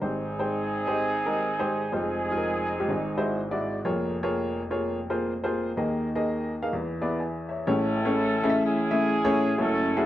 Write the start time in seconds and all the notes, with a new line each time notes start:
0.01 G#1 G#2 G#3 C4 D#4 G4 G#4 C5
0.39 G#3 D#4 C5 G5
0.87 G#3 D#4 G4 C5
1.26 G#3 D#4 G4 A#4
1.59 G#3 D#4 G4 C5
1.92 F1 F2 G#3 C4 D#4 F4 G#4 C5
2.31 G#3 D#4 F4 G#4
2.37 A#4
2.79 G#3 D#4 F4 G4
2.89 G#1 G#2
3.17 G#3 E4 F#4 C5
3.51 G#3 E4 F#4 D5
3.85 F1 F2 A#3 F4 G#4 C#5
4.23 A#3 F4 G#4 C#5
4.71 A#3 F4 G#4 C#5
5.10 A#3 F4 G#4 C5
5.44 A#3 F4 G#4 C5
5.77 D#2 D#3 A#3 D#4 G#4 D#5
6.15 A#3 D#4 G#4 D#5
6.62 A#3 D#4 G#4 F5
6.73 E2 E3
7.01 B3 E4 G#4 D5
7.20 E5 G#5
7.49 C#5 E5
7.67 A1 A2 A3 C#4 E4 G#4 A4 C#5
8.05 A3 C#4 E4 G#4 C#5
8.44 A3 C#4 E4 G#4 D#5
8.49 E5
8.65 C#4 E4 G#4
8.91 A3 C#4 E4 G#4 E5
9.24 A3 C#4 E4 G#4 C#5
9.58 F#1 F#2 A3 C#4 E4 F#4 A4 C#5
9.97 A3 C#4 E4 F#4 G#4